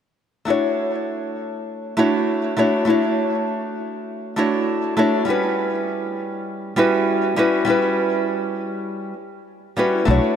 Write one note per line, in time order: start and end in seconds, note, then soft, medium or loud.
0.45 1.93 A3 medium
0.45 1.94 D4 medium
0.45 1.94 E4 medium
0.45 1.95 F#4 medium
0.50 1.96 C#5 medium
1.97 2.54 A3 medium
1.97 2.54 D4 medium
1.97 2.54 E4 medium
1.97 2.55 F#4 medium
1.97 2.55 C#5 medium
2.57 2.84 A3 medium
2.57 2.84 D4 medium
2.57 2.85 E4 medium
2.57 2.85 F#4 medium
2.57 2.85 C#5 medium
2.85 4.33 A3 medium
2.85 4.34 D4 medium
2.85 4.34 E4 medium
2.85 4.35 F#4 medium
2.90 4.35 C#5 medium
4.36 4.94 A3 medium
4.36 4.94 D4 medium
4.36 4.94 E4 medium
4.36 4.95 F#4 medium
4.36 4.95 C#5 medium
4.97 5.24 A3 medium
4.97 5.24 D4 medium
4.97 5.24 E4 medium
4.97 5.25 F#4 medium
4.97 5.25 C#5 medium
5.25 6.73 G3 medium
5.25 6.74 C#4 medium
5.25 6.74 E4 medium
5.25 6.75 F#4 medium
5.30 6.76 B4 medium
6.76 7.34 G3 medium
6.76 7.34 C#4 medium
6.76 7.34 E4 medium
6.76 7.35 F#4 medium
6.76 7.35 B4 medium
7.36 7.64 G3 medium
7.36 7.64 C#4 medium
7.36 7.64 E4 medium
7.36 7.65 F#4 medium
7.36 7.65 B4 medium
7.65 9.13 G3 medium
7.65 9.14 C#4 medium
7.65 9.14 E4 medium
7.65 9.15 F#4 medium
7.70 9.15 B4 medium
9.77 10.04 G3 medium
9.77 10.04 C#4 medium
9.77 10.04 E4 medium
9.77 10.05 F#4 medium
9.77 10.05 B4 medium
10.05 10.18 B1 medium
10.05 10.36 A3 medium
10.05 10.36 D4 medium
10.05 10.36 E4 medium
10.05 10.36 F#4 medium
10.10 10.36 C#5 medium